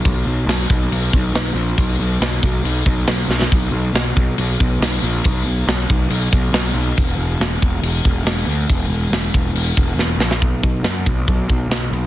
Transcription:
0.05 B1, kick, crash
0.26 B1
0.46 B1, snare, crash
0.70 B1, kick
0.91 B1, crash
1.13 B1, kick
1.34 B1, snare, crash
1.54 A#1
1.78 B1, kick, crash
1.99 B1
2.20 B1, snare, crash
2.43 B1, kick
2.64 B1, crash
2.86 B1, kick
3.07 B1, snare, crash
3.28 B1, snare
3.42 snare
3.52 B1, kick, crash
3.71 B1
3.93 B1, snare, crash
4.16 B1, kick
4.38 B1, crash
4.60 B1, kick
4.80 B1, snare, crash
5.02 A#1
5.24 B1, kick, crash
5.45 B1
5.67 B1, snare, crash
5.90 B1, kick
6.10 B1, crash
6.33 B1, kick
6.53 B1, snare, crash
6.73 B1
6.97 E1, kick, crash
7.17 E1
7.38 E1, snare, crash
7.62 E1, kick
7.81 E1, crash
8.05 E1, kick
8.25 E1, snare, crash
8.46 D2
8.69 E1, kick, crash
8.88 E1
9.10 E1, snare, crash
9.34 E1, kick
9.53 E1, crash
9.77 E1, kick
9.96 E1, snare
10.17 A#1, snare
10.31 snare
10.41 B1, kick, open hi-hat
10.63 B1, kick, open hi-hat
10.83 F#2, snare, open hi-hat
11.05 B1, kick, open hi-hat
11.27 B1, kick, open hi-hat
11.49 B1, kick, open hi-hat
11.69 B1, snare, open hi-hat
11.91 B1, open hi-hat

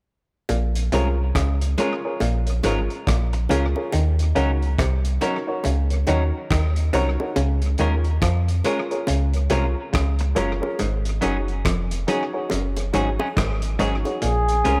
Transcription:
0.49 A#1 A#2, closed hi-hat, high bongo
0.75 closed hi-hat
0.92 C2 C3 G#3 C#4 F4 G#4 A#4 C#5, closed hi-hat
1.35 C#2 C#3, kick, cross-stick, closed hi-hat
1.61 closed hi-hat
1.78 G#3 C#4 F4 G#4 A#4 C#5, closed hi-hat, low bongo
2.04 F4 G#4 A#4 C#5
2.20 A#1 A#2, closed hi-hat, high bongo
2.46 A#4 C#5, closed hi-hat
2.63 G#1 G#2 G#3 C#4 F4 G#4 A#4 C#5, closed hi-hat, high bongo
2.90 closed hi-hat
3.07 A#1 A#2, kick, cross-stick, closed hi-hat
3.33 muted clean electric guitar stroke, closed hi-hat
3.49 C#2 C#3 G#3 C#4 F4 G#4 A#4 C#5, closed hi-hat, low bongo
3.75 F4 G#4 A#4 C#5, high bongo
3.92 D#2 D#3, closed hi-hat, high bongo
4.19 closed hi-hat
4.35 C#2 C#3 F#3 C#4 D#4 F#4 A#4 C#5, closed hi-hat
4.62 closed hi-hat
4.79 C2 C3, kick, cross-stick, closed hi-hat
5.05 closed hi-hat
5.21 F#3 C#4 D#4 F#4 A#4 C#5, closed hi-hat, low bongo
5.47 D#4 F#4 A#4 C#5
5.64 C#2 C#3, closed hi-hat, high bongo
5.90 A#4 C#5, closed hi-hat
6.07 D#2 D#3 F#3 C#4 D#4 F#4 A#4 C#5, closed hi-hat, high bongo
6.51 D#2 D#3, kick, cross-stick, closed hi-hat
6.76 closed hi-hat
6.93 C2 C3 F#3 C#4 D#4 F#4 A#4 C#5, closed hi-hat, low bongo
7.20 D#4 F#4 A#4 C#5, high bongo
7.36 C#2 C#3, closed hi-hat, high bongo
7.62 closed hi-hat
7.78 D#2 D#3 G#3 C#4 F4 G#4 A#4 C#5, closed hi-hat
8.04 closed hi-hat
8.22 F2 F3, kick, cross-stick, closed hi-hat
8.48 closed hi-hat
8.64 G#3 C#4 F4 G#4 A#4 C#5, closed hi-hat, low bongo
8.90 F4 G#4 A#4 C#5, closed hi-hat
9.07 C#2 C#3, closed hi-hat, high bongo
9.34 A#4 C#5, closed hi-hat
9.50 C2 C3 G#3 C#4 F4 G#4 A#4 C#5, closed hi-hat, high bongo
9.93 C#2 C#3, kick, cross-stick, closed hi-hat
10.19 muted clean electric guitar stroke, closed hi-hat
10.35 F#1 F#2 G#3 C#4 F4 G#4 A#4 C#5, closed hi-hat, low bongo
10.61 F4 G#4 A#4 C#5, high bongo
10.79 G#1 G#2, closed hi-hat, high bongo
11.05 closed hi-hat
11.21 F#1 F#2 F#3 C#4 D#4 F#4 G#4 C#5, closed hi-hat
11.48 closed hi-hat
11.65 F1 F2, kick, cross-stick, closed hi-hat
11.91 closed hi-hat
12.07 F#3 C#4 D#4 F#4 G#4 C#5, closed hi-hat, high bongo, low bongo
12.33 D#4 F#4 G#4 C#5
12.50 F#1 F#2, closed hi-hat, high bongo
12.77 G#4 C#5, closed hi-hat, high bongo
12.93 G#1 G#2 F#3 C#4 D#4 F#4 G#4 C#5, closed hi-hat, high bongo
13.19 F#3 C#4 D#4 G#4, high bongo
13.37 G#1 G#2, kick, cross-stick, closed hi-hat
13.62 closed hi-hat
13.79 G#1 G#2 F#3 C#4 D#4 F#4 G#4 C#5, closed hi-hat, low bongo
14.05 D#4 F#4 G#4 C#5, closed hi-hat, high bongo
14.22 A#1 A#2 G#4, closed hi-hat
14.48 closed hi-hat
14.64 C2 C3 G#3 C#4 F4 G#4 A#4, closed hi-hat

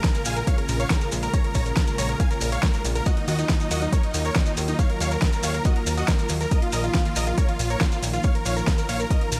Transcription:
Already playing: C#3 G#3 A#3 F4
0.04 A#4, kick, snare, closed hi-hat, maracas
0.14 A#4, closed hi-hat, maracas
0.25 A#1 F5 G#5, open hi-hat, maracas
0.36 A#4, closed hi-hat, maracas
0.47 C#5 F5, kick, closed hi-hat, maracas
0.58 A#4, closed hi-hat
0.68 A#1 A#4, open hi-hat, maracas
0.80 C#5 F5, closed hi-hat, maracas
0.90 A#4, kick, snare, closed hi-hat, maracas
1.01 A#4, closed hi-hat, maracas
1.12 A#1, open hi-hat, maracas
1.23 A#4, closed hi-hat, maracas
1.33 C#5 A#5, kick, closed hi-hat, maracas
1.44 A#4, closed hi-hat
1.54 A#1 C#5 A#5, kick, open hi-hat, maracas
1.66 A#4, closed hi-hat, maracas
1.77 A#4, kick, snare, closed hi-hat, maracas
1.87 A#4, closed hi-hat, maracas
1.98 A#1 C#5 A#5, open hi-hat, maracas
2.09 A#4, closed hi-hat, maracas
2.20 F5 G#5, kick, closed hi-hat, maracas
2.31 A#4, closed hi-hat, maracas
2.41 A#1 A#4, open hi-hat, maracas
2.52 C#5 F5, closed hi-hat, maracas
2.63 A#4, kick, snare, closed hi-hat, maracas
2.74 A#4, closed hi-hat, maracas
2.85 A#1, open hi-hat, maracas
2.95 A#4, closed hi-hat, maracas
3.06 D#3 F#3 F#4 D#5, kick, closed hi-hat, maracas
3.17 D#4, closed hi-hat
3.28 D#2 F#4 D#5, open hi-hat, maracas
3.39 D#4, closed hi-hat, maracas
3.49 D#4, kick, snare, closed hi-hat, maracas
3.60 D#4, closed hi-hat, maracas
3.71 D#2 F#4 D#5, open hi-hat, maracas
3.82 D#4, closed hi-hat, maracas
3.93 A#4 C#5, kick, closed hi-hat, maracas
4.03 D#4, closed hi-hat
4.14 D#2 D#4, open hi-hat, maracas
4.25 A#4 C#5, closed hi-hat, maracas
4.35 D#4, kick, snare, closed hi-hat, maracas
4.46 D#4, closed hi-hat, maracas
4.57 D#2, open hi-hat, maracas
4.68 D#4, closed hi-hat, maracas
4.79 C#5 F5, kick, closed hi-hat, maracas
4.90 A#4, closed hi-hat
5.00 D#2 C#5 F5, open hi-hat, maracas
5.11 A#4, closed hi-hat, maracas
5.22 A#4, kick, snare, closed hi-hat, maracas
5.33 A#4, closed hi-hat, maracas
5.43 D#2 C#5 F5, open hi-hat, maracas
5.54 A#4, closed hi-hat, maracas
5.65 F#4 D#5, kick, closed hi-hat, maracas
5.76 A#4, closed hi-hat
5.87 D#2 A#4, open hi-hat, maracas
5.97 F#4 D#5, closed hi-hat, maracas
6.08 A#4, kick, snare, closed hi-hat, maracas
6.19 A#4, closed hi-hat, maracas
6.29 D#2, open hi-hat, maracas
6.41 A#4, closed hi-hat, maracas
6.51 D#3 F3 A#4 D#5, kick, closed hi-hat, maracas
6.62 F4, closed hi-hat
6.72 A#1 A#4 D#5, open hi-hat, maracas
6.83 F4, closed hi-hat, maracas
6.94 F4, kick, snare, closed hi-hat, maracas
7.05 F4, closed hi-hat, maracas
7.16 A#1 A#4 D#5, open hi-hat, maracas
7.27 F4, closed hi-hat, maracas
7.38 A#4 C#5, kick, closed hi-hat, maracas
7.49 F4, closed hi-hat
7.59 A#1 F4, open hi-hat, maracas
7.70 A#4 C#5, closed hi-hat, maracas
7.81 F4, kick, snare, closed hi-hat, maracas
7.92 F4, closed hi-hat, maracas
8.03 A#1, open hi-hat, maracas
8.13 F4, closed hi-hat, maracas
8.23 C#5 F5, kick, closed hi-hat, maracas
8.35 A#4, closed hi-hat
8.45 A#1 C#5 F5, open hi-hat, maracas
8.57 A#4, closed hi-hat, maracas
8.67 A#4, kick, snare, closed hi-hat, maracas
8.78 A#4, closed hi-hat, maracas
8.89 A#1 C#5 F5, open hi-hat, maracas
9.00 A#4, closed hi-hat, maracas
9.10 A#4 D#5, kick, closed hi-hat, maracas
9.21 A#4, closed hi-hat
9.32 A#1 A#4, open hi-hat, maracas

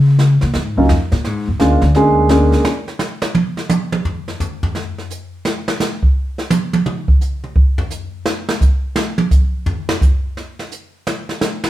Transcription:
Already playing: C#3
0.19 snare
0.41 A#2, snare
0.54 G#2, brush sweep, snare
0.77 C#2 F#3 A#3 C#4 D#4 F4
0.89 F2, snare
1.12 A#2, snare
1.24 G#2, brush sweep, snare
1.48 F#2
1.60 D2 G#3 A#3 C#4 D4 F4, snare
1.81 D2, snare
1.95 G#3 A#3 C#4 D4 G#4, brush sweep, snare
2.29 G#3 A#3 C#4 D4 G#4, snare
2.52 snare
2.65 snare
2.88 snare
2.99 snare, hi-hat pedal
3.22 snare
3.35 high tom
3.57 snare
3.69 hi-hat pedal, high tom
3.92 high tom
4.05 floor tom
4.28 snare
4.40 floor tom, hi-hat pedal
4.63 floor tom
4.75 snare
4.98 snare
5.10 hi-hat pedal
5.45 snare
5.68 snare
5.80 snare, hi-hat pedal
6.03 kick
6.38 snare
6.50 hi-hat pedal, high tom
6.73 high tom
6.86 mid tom
7.08 kick
7.21 hi-hat pedal
7.44 mid tom
7.56 kick
7.78 floor tom
7.91 hi-hat pedal
8.26 snare
8.49 snare
8.61 kick, hi-hat pedal
8.96 snare
9.18 high tom
9.31 kick, hi-hat pedal
9.66 floor tom
9.89 snare
10.01 kick, hi-hat pedal
10.37 snare
10.59 snare
10.71 hi-hat pedal
11.07 snare
11.29 snare
11.41 snare, hi-hat pedal
11.64 snare

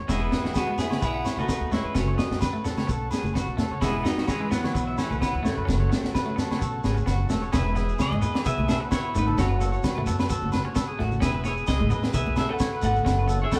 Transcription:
0.00 D#2
0.08 E1 G#3 B3 C#4 E4 G#4 B4, kick, snare, low agogo, shekere
0.20 B4
0.31 B3, snare, low conga, shekere
0.44 E2 F#4, snare
0.53 B3 F#4 G#4, kick, snare, low agogo, shekere
0.67 G#3 B4
0.78 B3 E4 G#4, snare, low conga, shekere
0.90 C#5, snare, high conga, low agogo, shekere
1.01 B1 B3 E4 F#4 G#4 B4, kick, shekere
1.14 F#5
1.25 C#5, snare, low agogo, shekere
1.37 B1 A3 C#4 D#4 F#4 B4, high conga, shekere
1.49 B3 B4, kick, snare, low agogo, shekere
1.61 D#2
1.71 G#3 A3 C#4 E4 C#5, snare, low conga, shekere
1.83 F#2 B4
1.94 F#1 F#3 A3 C#4 A4, kick, snare, low agogo, shekere
2.08 C#5
2.18 B3 D#5, snare, low conga, shekere
2.31 F#2, snare
2.41 B4, kick, snare, low agogo, shekere
2.53 A3
2.65 B3 A4, snare, low conga, shekere
2.77 C#5, snare, high conga, low agogo, shekere
2.87 B1 B3 A4, kick, shekere
3.11 G#4, snare, low agogo, shekere
3.23 F#1, high conga, shekere
3.34 B3 F#4, kick, snare, low agogo, shekere
3.47 B1
3.57 A3 A4, snare, low conga, shekere
3.70 C#2 C#5
3.81 E1 G#3 B3 C#4 E4 G#4 B4, kick, snare, low agogo, shekere
3.95 B4
4.03 F#3 B3 D#4, snare, low conga, shekere
4.16 E2 F#4, snare
4.27 E3 G#3 C#4 G#4, kick, snare, low agogo, shekere
4.40 G#3 B4
4.51 E3 F#3 B3, snare, low conga, shekere
4.64 C#5, snare, high conga, low agogo, shekere
4.75 B1 B3 F#4 B4, kick, shekere
4.87 E5
4.98 E3 A3 C#4 C#5, snare, low agogo, shekere
5.10 B1 C#4 B4, high conga, shekere
5.20 E3 F#3 B3 B4, kick, snare, low agogo, shekere
5.35 D#2
5.43 C#3 A3 C#5, snare, low conga, shekere
5.47 F#3
5.58 F#2 B4
5.65 F#1 C#4 A4, kick, snare, low conga, low agogo
5.69 shekere
5.80 C#5, high conga
5.90 B3, snare, shekere
6.04 F#2, snare, shekere
6.14 B4, kick, snare, low agogo, shekere
6.26 A3
6.36 B3 A4, snare, low conga, shekere
6.51 C#5, snare, high conga, low agogo, shekere
6.59 B1 B3 A4, kick, shekere
6.84 G#1 G#4, snare, low agogo, shekere
6.95 C#4, high conga, shekere
7.06 F#1 B3 F#4, kick, snare, low agogo, shekere
7.30 E1 A3 A4, snare, low conga, shekere
7.42 C#5, shekere
7.52 E1 B3 C#4 E4 G#4 B4, kick, snare, low agogo, shekere
7.65 B4
7.75 B3 G#4, snare, shekere
7.89 shekere
7.99 C#2 G#4 D#5, kick, snare, low agogo, shekere
8.11 G#1 G#3, high conga
8.22 E2 B3 B4, low conga, shekere
8.35 snare, low agogo, shekere
8.44 B1 B3 F#4 G#4 B4 E5, kick, shekere
8.58 B1, high conga
8.68 G#4 A4 E5, snare, high conga, low agogo, shekere
8.80 C#4 B4
8.91 B3 E4 C#5, kick, snare, low agogo, shekere
9.04 B4
9.15 G#1 A3 D#4 B4, low conga, shekere
9.26 A4, high conga
9.37 F#1 A3 C#4 F#4 C#5, kick, snare, low agogo, shekere
9.49 B4
9.60 B3 A4, shekere
9.72 C#5, shekere
9.84 D#2, kick, snare, low agogo, shekere
9.95 A1 A3 B4, high conga
10.06 F#2 B3 A4, low conga, shekere
10.19 B4, snare, low agogo, shekere
10.29 B3 A4, kick, shekere
10.42 F#1, high conga
10.52 B4, snare, high conga, low agogo, shekere
10.65 C#4 C#5
10.75 B3 A4, kick, snare, low agogo, shekere
10.88 G#4
10.99 A1 A3 F#4, snare, low conga
11.11 high conga, shekere
11.20 E1 B3 C#4 E4 G#4 B4, kick, snare, low agogo, shekere
11.35 B4
11.44 B3 E4 G#4 C#5, snare, shekere
11.57 shekere
11.67 C#2 G#4 D#5, kick, snare, low agogo, shekere
11.79 G#1 G#3, high conga
11.90 A1 B3 B4, low conga, shekere
12.03 snare, low agogo, shekere
12.13 B1 F#3 F#4 G#4 B4 E5, kick, shekere
12.27 B1, high conga
12.36 G#4 A4 E5, snare, high conga, low agogo, shekere
12.49 C#4 A4 B4 F#5
12.59 B3 C#5, kick, snare, low agogo, shekere
12.73 B4
12.82 G#1 A3 A4 F#5, low conga, shekere
12.95 high conga, shekere
13.05 F#1 A3 C#4, kick, snare, low agogo, shekere
13.19 B4
13.28 B3 A4, shekere
13.42 G#4 C#5 E5
13.52 D#2 A4 F#5, kick, snare, low agogo, shekere

